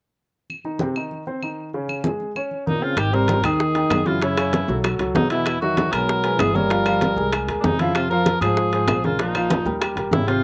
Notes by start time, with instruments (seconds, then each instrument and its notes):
0.50 high conga, claves
0.65 grand piano D#3 D#4, high conga
0.79 grand piano C3 C4, high conga
0.96 grand piano D#3 D#4, claves
1.11 high conga
1.27 grand piano C4 C5, high conga
1.43 grand piano D#3 D#4, high conga, claves
1.74 grand piano C#3 C#4, high conga
1.89 high conga, claves
2.04 grand piano G#3 G#4, high conga
2.20 high conga
2.35 grand piano C#4 C#5, high conga, claves
2.51 high conga
2.67 trombone A#2, grand piano A#3 A#4, cor anglais D#4, high conga
2.82 trombone C#3, grand piano C4 C5, cor anglais F4
2.97 upright bass G#1, trombone D#3, cor anglais G4, high bongo, high conga, high timbale, claves
3.13 grand piano C3 C4 C5, trombone G3, cor anglais A#4, high bongo, high conga
3.28 high bongo, high conga, high timbale, low timbale
3.43 upright bass D#2, grand piano D#3 D#4 G5, trombone D#3, cor anglais G#4, high bongo, high timbale, claves
3.60 high bongo, high conga
3.75 grand piano D#3 D#4 G5, high bongo, high conga, high timbale
3.90 upright bass F#2, high bongo, low bongo, high conga, high timbale, low timbale, claves
4.06 trombone C#3, grand piano E3 E4 F#4, cor anglais F4, high conga
4.21 trombone C#3, grand piano C#3 C#4 C#5, cor anglais E4, high bongo, high conga, high timbale
4.37 grand piano C#3 C#4 C#5, high bongo, high conga, high timbale, claves
4.53 high bongo, high conga, high timbale, low timbale
4.68 upright bass B1, grand piano F#3 F#4 A4, high bongo, high conga
4.84 grand piano F#3 F#4 A4, high bongo, high conga, high timbale, claves
4.99 upright bass C#2, grand piano F#3 F#4 A4, high bongo, high conga, high timbale
5.15 upright bass E2, trombone B2, cor anglais D#4, high bongo, low bongo, high conga, low timbale
5.30 trombone B2, grand piano E3 E4 E5, cor anglais E4, high timbale
5.46 high bongo, high conga, high timbale, claves
5.61 trombone D#3, grand piano F#3 F#4 E5, cor anglais F#4, high bongo, high conga
5.77 high bongo, high conga, high timbale, low timbale
5.92 upright bass B1, trombone F#3, grand piano G#3 B3 G#4, cor anglais A#4, high bongo, high timbale, claves
6.09 high bongo, high conga
6.24 grand piano G#3 G#4 B4, high bongo, high conga, high timbale
6.38 upright bass G1, trombone E3, cor anglais G#4, high bongo, low bongo, high conga, high timbale, low timbale, claves
6.54 trombone G3, grand piano A#3 A#4 C#5, cor anglais A#4, high conga
6.70 grand piano F3 F4 F5, high bongo, high conga, high timbale
6.86 grand piano F3 F4 F5, high bongo, high conga, high timbale, claves
7.01 high bongo, high conga, high timbale, low timbale
7.16 upright bass C2, grand piano G#3 G#4 A#4, high bongo, high conga
7.33 grand piano G#3 G#4 A#4, high bongo, high conga, high timbale, claves
7.48 upright bass D#2, grand piano G#3 G#4 A#4, high bongo, high conga, high timbale
7.60 upright bass F2, trombone A#2 C3, cor anglais D4 D#4, high bongo, low bongo, low timbale
7.65 high conga
7.79 trombone C#3, grand piano F3 F4 F5, cor anglais E4, high conga, high timbale
7.95 trombone C3, cor anglais F4, high bongo, high conga, high timbale, claves
8.10 trombone F3, grand piano F3 F4 F5, cor anglais A#4, high bongo, high conga
8.26 high bongo, high conga, high timbale, low timbale
8.41 upright bass G#2, trombone F3, grand piano G#3 G#4 C5, cor anglais G#4, high bongo, high timbale, claves
8.57 high bongo, high conga
8.73 grand piano G#3 G#4 C5, high bongo, high conga, high timbale
8.88 upright bass A#1, high bongo, low bongo, high conga, high timbale, low timbale, claves
9.04 trombone C#3, grand piano G#3 G#4 A#4, cor anglais F4, high conga
9.19 trombone A#2, grand piano F3 F4 F5, cor anglais D#4, high bongo, high conga, high timbale
9.35 grand piano F3 F4 F5, high bongo, high conga, high timbale, claves
9.50 high bongo, high conga, high timbale, low timbale
9.65 upright bass D#2, grand piano G3 G4 A#4, high bongo, high conga
9.81 grand piano G3 G4 A#4, high bongo, high conga, high timbale, claves
9.96 upright bass A#1, grand piano G3 G4 A#4, high bongo, high conga, high timbale
10.11 upright bass G#1, trombone C#3, cor anglais E4, high bongo, low bongo, high conga, low timbale
10.28 grand piano C3 C4 C5, trombone C3, cor anglais F4, high timbale